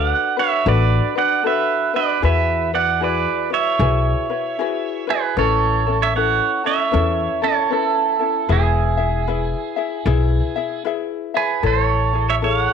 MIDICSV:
0, 0, Header, 1, 4, 480
1, 0, Start_track
1, 0, Key_signature, 3, "major"
1, 0, Tempo, 785340
1, 1359, Time_signature, 4, 2, 24, 8
1, 7781, End_track
2, 0, Start_track
2, 0, Title_t, "Pedal steel guitar"
2, 0, Program_c, 0, 26
2, 0, Note_on_c, 0, 74, 68
2, 0, Note_on_c, 0, 77, 91
2, 61, Note_off_c, 0, 77, 0
2, 61, Note_on_c, 0, 78, 91
2, 216, Note_off_c, 0, 74, 0
2, 239, Note_off_c, 0, 78, 0
2, 241, Note_on_c, 0, 76, 97
2, 244, Note_on_c, 0, 73, 75
2, 398, Note_off_c, 0, 73, 0
2, 414, Note_off_c, 0, 76, 0
2, 418, Note_on_c, 0, 71, 65
2, 419, Note_on_c, 0, 74, 89
2, 693, Note_off_c, 0, 71, 0
2, 713, Note_off_c, 0, 74, 0
2, 720, Note_on_c, 0, 74, 72
2, 724, Note_on_c, 0, 78, 86
2, 876, Note_off_c, 0, 74, 0
2, 895, Note_off_c, 0, 78, 0
2, 896, Note_on_c, 0, 71, 64
2, 898, Note_on_c, 0, 76, 84
2, 1172, Note_off_c, 0, 71, 0
2, 1197, Note_off_c, 0, 76, 0
2, 1199, Note_on_c, 0, 74, 84
2, 1202, Note_on_c, 0, 71, 70
2, 1357, Note_off_c, 0, 71, 0
2, 1372, Note_off_c, 0, 74, 0
2, 1373, Note_on_c, 0, 71, 67
2, 1376, Note_on_c, 0, 76, 85
2, 1650, Note_off_c, 0, 71, 0
2, 1675, Note_off_c, 0, 76, 0
2, 1678, Note_on_c, 0, 74, 68
2, 1682, Note_on_c, 0, 78, 90
2, 1835, Note_off_c, 0, 74, 0
2, 1852, Note_off_c, 0, 78, 0
2, 1856, Note_on_c, 0, 71, 65
2, 1859, Note_on_c, 0, 74, 84
2, 2131, Note_off_c, 0, 71, 0
2, 2160, Note_off_c, 0, 74, 0
2, 2162, Note_on_c, 0, 73, 73
2, 2164, Note_on_c, 0, 76, 91
2, 3087, Note_off_c, 0, 73, 0
2, 3118, Note_on_c, 0, 68, 70
2, 3120, Note_on_c, 0, 71, 83
2, 3140, Note_off_c, 0, 76, 0
2, 3274, Note_off_c, 0, 68, 0
2, 3290, Note_off_c, 0, 71, 0
2, 3293, Note_on_c, 0, 69, 64
2, 3293, Note_on_c, 0, 73, 85
2, 3653, Note_off_c, 0, 69, 0
2, 3676, Note_off_c, 0, 73, 0
2, 3682, Note_on_c, 0, 73, 60
2, 3686, Note_on_c, 0, 76, 77
2, 3758, Note_off_c, 0, 73, 0
2, 3764, Note_on_c, 0, 73, 66
2, 3766, Note_off_c, 0, 76, 0
2, 3769, Note_on_c, 0, 78, 80
2, 4044, Note_off_c, 0, 73, 0
2, 4072, Note_on_c, 0, 73, 69
2, 4074, Note_off_c, 0, 78, 0
2, 4077, Note_on_c, 0, 76, 94
2, 4522, Note_off_c, 0, 73, 0
2, 4545, Note_on_c, 0, 69, 67
2, 4549, Note_on_c, 0, 73, 80
2, 4563, Note_off_c, 0, 76, 0
2, 4706, Note_off_c, 0, 69, 0
2, 4718, Note_on_c, 0, 64, 55
2, 4725, Note_off_c, 0, 73, 0
2, 4725, Note_on_c, 0, 69, 70
2, 5172, Note_off_c, 0, 64, 0
2, 5205, Note_on_c, 0, 64, 54
2, 5207, Note_off_c, 0, 69, 0
2, 5209, Note_on_c, 0, 68, 67
2, 6616, Note_off_c, 0, 64, 0
2, 6617, Note_off_c, 0, 68, 0
2, 6947, Note_on_c, 0, 68, 58
2, 6948, Note_on_c, 0, 71, 73
2, 7108, Note_off_c, 0, 68, 0
2, 7124, Note_off_c, 0, 71, 0
2, 7128, Note_on_c, 0, 69, 60
2, 7130, Note_on_c, 0, 72, 76
2, 7234, Note_off_c, 0, 72, 0
2, 7234, Note_on_c, 0, 73, 76
2, 7490, Note_off_c, 0, 69, 0
2, 7508, Note_off_c, 0, 73, 0
2, 7515, Note_on_c, 0, 73, 60
2, 7518, Note_on_c, 0, 76, 74
2, 7546, Note_off_c, 0, 73, 0
2, 7548, Note_off_c, 0, 76, 0
2, 7604, Note_on_c, 0, 73, 65
2, 7604, Note_on_c, 0, 77, 73
2, 7720, Note_off_c, 0, 77, 0
2, 7720, Note_on_c, 0, 78, 73
2, 7781, Note_off_c, 0, 73, 0
2, 7781, Note_off_c, 0, 78, 0
2, 7781, End_track
3, 0, Start_track
3, 0, Title_t, "Ukulele"
3, 0, Program_c, 1, 24
3, 0, Note_on_c, 1, 62, 58
3, 0, Note_on_c, 1, 66, 61
3, 0, Note_on_c, 1, 69, 54
3, 0, Note_on_c, 1, 71, 63
3, 217, Note_off_c, 1, 71, 0
3, 223, Note_off_c, 1, 69, 0
3, 224, Note_off_c, 1, 66, 0
3, 225, Note_on_c, 1, 71, 51
3, 226, Note_off_c, 1, 62, 0
3, 232, Note_on_c, 1, 66, 45
3, 236, Note_on_c, 1, 62, 34
3, 396, Note_off_c, 1, 62, 0
3, 399, Note_off_c, 1, 66, 0
3, 400, Note_off_c, 1, 71, 0
3, 401, Note_on_c, 1, 69, 73
3, 404, Note_on_c, 1, 62, 81
3, 406, Note_on_c, 1, 66, 80
3, 410, Note_on_c, 1, 71, 79
3, 697, Note_off_c, 1, 71, 0
3, 704, Note_off_c, 1, 66, 0
3, 705, Note_off_c, 1, 69, 0
3, 705, Note_on_c, 1, 71, 52
3, 706, Note_off_c, 1, 62, 0
3, 711, Note_on_c, 1, 66, 47
3, 715, Note_on_c, 1, 62, 43
3, 874, Note_off_c, 1, 62, 0
3, 879, Note_on_c, 1, 69, 62
3, 880, Note_off_c, 1, 66, 0
3, 880, Note_off_c, 1, 71, 0
3, 882, Note_on_c, 1, 62, 52
3, 888, Note_on_c, 1, 66, 63
3, 893, Note_on_c, 1, 71, 59
3, 1177, Note_off_c, 1, 71, 0
3, 1184, Note_off_c, 1, 66, 0
3, 1184, Note_off_c, 1, 69, 0
3, 1184, Note_on_c, 1, 71, 52
3, 1185, Note_off_c, 1, 62, 0
3, 1191, Note_on_c, 1, 66, 43
3, 1197, Note_on_c, 1, 62, 45
3, 1356, Note_off_c, 1, 62, 0
3, 1356, Note_off_c, 1, 66, 0
3, 1357, Note_on_c, 1, 68, 68
3, 1359, Note_off_c, 1, 71, 0
3, 1359, Note_on_c, 1, 64, 73
3, 1363, Note_on_c, 1, 66, 77
3, 1367, Note_on_c, 1, 71, 82
3, 1662, Note_off_c, 1, 71, 0
3, 1663, Note_off_c, 1, 64, 0
3, 1663, Note_off_c, 1, 68, 0
3, 1666, Note_off_c, 1, 66, 0
3, 1669, Note_on_c, 1, 71, 52
3, 1675, Note_on_c, 1, 66, 49
3, 1680, Note_on_c, 1, 64, 44
3, 1833, Note_off_c, 1, 64, 0
3, 1833, Note_off_c, 1, 71, 0
3, 1835, Note_on_c, 1, 68, 60
3, 1839, Note_off_c, 1, 66, 0
3, 1840, Note_on_c, 1, 64, 57
3, 1846, Note_on_c, 1, 66, 64
3, 1849, Note_on_c, 1, 71, 62
3, 2131, Note_off_c, 1, 71, 0
3, 2136, Note_off_c, 1, 68, 0
3, 2138, Note_on_c, 1, 71, 46
3, 2140, Note_off_c, 1, 66, 0
3, 2144, Note_off_c, 1, 64, 0
3, 2148, Note_on_c, 1, 66, 45
3, 2152, Note_on_c, 1, 64, 45
3, 2316, Note_off_c, 1, 64, 0
3, 2316, Note_off_c, 1, 71, 0
3, 2318, Note_off_c, 1, 66, 0
3, 2320, Note_on_c, 1, 68, 70
3, 2324, Note_on_c, 1, 64, 75
3, 2326, Note_on_c, 1, 66, 77
3, 2330, Note_on_c, 1, 71, 86
3, 2619, Note_off_c, 1, 71, 0
3, 2623, Note_off_c, 1, 68, 0
3, 2624, Note_off_c, 1, 66, 0
3, 2625, Note_off_c, 1, 64, 0
3, 2626, Note_on_c, 1, 71, 51
3, 2631, Note_on_c, 1, 66, 45
3, 2635, Note_on_c, 1, 64, 40
3, 2798, Note_off_c, 1, 64, 0
3, 2800, Note_off_c, 1, 71, 0
3, 2802, Note_off_c, 1, 66, 0
3, 2804, Note_on_c, 1, 68, 59
3, 2806, Note_on_c, 1, 64, 66
3, 2815, Note_on_c, 1, 66, 74
3, 2815, Note_on_c, 1, 71, 75
3, 3091, Note_off_c, 1, 71, 0
3, 3096, Note_off_c, 1, 68, 0
3, 3099, Note_on_c, 1, 71, 55
3, 3100, Note_off_c, 1, 66, 0
3, 3106, Note_off_c, 1, 64, 0
3, 3107, Note_on_c, 1, 66, 48
3, 3114, Note_on_c, 1, 64, 43
3, 3274, Note_off_c, 1, 71, 0
3, 3280, Note_off_c, 1, 66, 0
3, 3281, Note_on_c, 1, 71, 80
3, 3282, Note_off_c, 1, 64, 0
3, 3285, Note_on_c, 1, 61, 73
3, 3289, Note_on_c, 1, 64, 88
3, 3289, Note_on_c, 1, 69, 83
3, 3578, Note_off_c, 1, 69, 0
3, 3583, Note_off_c, 1, 71, 0
3, 3585, Note_off_c, 1, 61, 0
3, 3585, Note_off_c, 1, 64, 0
3, 3585, Note_on_c, 1, 69, 59
3, 3592, Note_on_c, 1, 64, 46
3, 3596, Note_on_c, 1, 61, 43
3, 3756, Note_off_c, 1, 69, 0
3, 3759, Note_off_c, 1, 61, 0
3, 3759, Note_on_c, 1, 71, 50
3, 3762, Note_off_c, 1, 64, 0
3, 3766, Note_on_c, 1, 61, 64
3, 3770, Note_on_c, 1, 64, 62
3, 3773, Note_on_c, 1, 69, 64
3, 4051, Note_off_c, 1, 69, 0
3, 4055, Note_off_c, 1, 71, 0
3, 4056, Note_off_c, 1, 64, 0
3, 4058, Note_on_c, 1, 69, 46
3, 4062, Note_off_c, 1, 61, 0
3, 4064, Note_on_c, 1, 64, 42
3, 4070, Note_on_c, 1, 61, 37
3, 4224, Note_off_c, 1, 69, 0
3, 4225, Note_off_c, 1, 61, 0
3, 4227, Note_off_c, 1, 64, 0
3, 4227, Note_on_c, 1, 71, 70
3, 4232, Note_on_c, 1, 61, 78
3, 4235, Note_on_c, 1, 64, 82
3, 4237, Note_on_c, 1, 69, 81
3, 4526, Note_off_c, 1, 69, 0
3, 4531, Note_off_c, 1, 71, 0
3, 4532, Note_off_c, 1, 64, 0
3, 4533, Note_on_c, 1, 69, 48
3, 4539, Note_off_c, 1, 61, 0
3, 4539, Note_on_c, 1, 64, 53
3, 4546, Note_on_c, 1, 61, 44
3, 4706, Note_off_c, 1, 61, 0
3, 4707, Note_off_c, 1, 69, 0
3, 4709, Note_on_c, 1, 71, 60
3, 4711, Note_off_c, 1, 64, 0
3, 4713, Note_on_c, 1, 61, 56
3, 4719, Note_on_c, 1, 64, 61
3, 4722, Note_on_c, 1, 69, 62
3, 5000, Note_off_c, 1, 69, 0
3, 5005, Note_off_c, 1, 71, 0
3, 5008, Note_off_c, 1, 64, 0
3, 5008, Note_on_c, 1, 69, 46
3, 5014, Note_off_c, 1, 61, 0
3, 5015, Note_on_c, 1, 64, 49
3, 5022, Note_on_c, 1, 61, 42
3, 5179, Note_off_c, 1, 64, 0
3, 5183, Note_off_c, 1, 61, 0
3, 5186, Note_on_c, 1, 64, 73
3, 5187, Note_on_c, 1, 71, 73
3, 5189, Note_off_c, 1, 69, 0
3, 5190, Note_on_c, 1, 68, 83
3, 5193, Note_on_c, 1, 76, 87
3, 5477, Note_off_c, 1, 76, 0
3, 5484, Note_off_c, 1, 68, 0
3, 5484, Note_on_c, 1, 76, 59
3, 5489, Note_off_c, 1, 64, 0
3, 5491, Note_on_c, 1, 68, 53
3, 5496, Note_off_c, 1, 71, 0
3, 5498, Note_on_c, 1, 64, 45
3, 5668, Note_off_c, 1, 64, 0
3, 5668, Note_off_c, 1, 76, 0
3, 5668, Note_on_c, 1, 71, 57
3, 5669, Note_off_c, 1, 68, 0
3, 5676, Note_on_c, 1, 64, 61
3, 5676, Note_on_c, 1, 68, 63
3, 5679, Note_on_c, 1, 76, 61
3, 5960, Note_off_c, 1, 76, 0
3, 5966, Note_off_c, 1, 68, 0
3, 5967, Note_on_c, 1, 76, 54
3, 5972, Note_off_c, 1, 64, 0
3, 5974, Note_on_c, 1, 68, 50
3, 5977, Note_off_c, 1, 71, 0
3, 5980, Note_on_c, 1, 64, 48
3, 6145, Note_off_c, 1, 64, 0
3, 6145, Note_off_c, 1, 68, 0
3, 6147, Note_off_c, 1, 76, 0
3, 6148, Note_on_c, 1, 71, 82
3, 6152, Note_on_c, 1, 64, 87
3, 6153, Note_on_c, 1, 68, 90
3, 6154, Note_on_c, 1, 76, 86
3, 6445, Note_off_c, 1, 76, 0
3, 6452, Note_off_c, 1, 68, 0
3, 6453, Note_on_c, 1, 76, 60
3, 6456, Note_off_c, 1, 71, 0
3, 6458, Note_off_c, 1, 64, 0
3, 6459, Note_on_c, 1, 68, 50
3, 6465, Note_on_c, 1, 64, 45
3, 6624, Note_off_c, 1, 64, 0
3, 6628, Note_on_c, 1, 71, 61
3, 6630, Note_off_c, 1, 68, 0
3, 6632, Note_off_c, 1, 76, 0
3, 6632, Note_on_c, 1, 64, 62
3, 6638, Note_on_c, 1, 68, 66
3, 6641, Note_on_c, 1, 76, 67
3, 6925, Note_off_c, 1, 76, 0
3, 6930, Note_off_c, 1, 68, 0
3, 6933, Note_on_c, 1, 76, 51
3, 6937, Note_off_c, 1, 71, 0
3, 6937, Note_on_c, 1, 68, 47
3, 6938, Note_off_c, 1, 64, 0
3, 6946, Note_on_c, 1, 64, 43
3, 7104, Note_off_c, 1, 64, 0
3, 7105, Note_off_c, 1, 76, 0
3, 7107, Note_on_c, 1, 69, 70
3, 7111, Note_on_c, 1, 64, 75
3, 7114, Note_off_c, 1, 68, 0
3, 7117, Note_on_c, 1, 73, 76
3, 7407, Note_off_c, 1, 73, 0
3, 7412, Note_off_c, 1, 69, 0
3, 7414, Note_on_c, 1, 73, 50
3, 7418, Note_off_c, 1, 64, 0
3, 7424, Note_on_c, 1, 68, 49
3, 7427, Note_on_c, 1, 64, 44
3, 7587, Note_off_c, 1, 64, 0
3, 7588, Note_off_c, 1, 73, 0
3, 7590, Note_on_c, 1, 69, 58
3, 7592, Note_off_c, 1, 68, 0
3, 7595, Note_on_c, 1, 64, 56
3, 7600, Note_on_c, 1, 68, 64
3, 7605, Note_on_c, 1, 73, 67
3, 7781, Note_off_c, 1, 64, 0
3, 7781, Note_off_c, 1, 68, 0
3, 7781, Note_off_c, 1, 69, 0
3, 7781, Note_off_c, 1, 73, 0
3, 7781, End_track
4, 0, Start_track
4, 0, Title_t, "Upright bass"
4, 0, Program_c, 2, 32
4, 0, Note_on_c, 2, 38, 90
4, 68, Note_off_c, 2, 38, 0
4, 403, Note_on_c, 2, 33, 97
4, 600, Note_off_c, 2, 33, 0
4, 1364, Note_on_c, 2, 40, 88
4, 1985, Note_off_c, 2, 40, 0
4, 2319, Note_on_c, 2, 35, 101
4, 2516, Note_off_c, 2, 35, 0
4, 3280, Note_on_c, 2, 33, 91
4, 3903, Note_off_c, 2, 33, 0
4, 4240, Note_on_c, 2, 40, 100
4, 4437, Note_off_c, 2, 40, 0
4, 5190, Note_on_c, 2, 28, 96
4, 5816, Note_off_c, 2, 28, 0
4, 6146, Note_on_c, 2, 35, 100
4, 6347, Note_off_c, 2, 35, 0
4, 7109, Note_on_c, 2, 33, 90
4, 7736, Note_off_c, 2, 33, 0
4, 7781, End_track
0, 0, End_of_file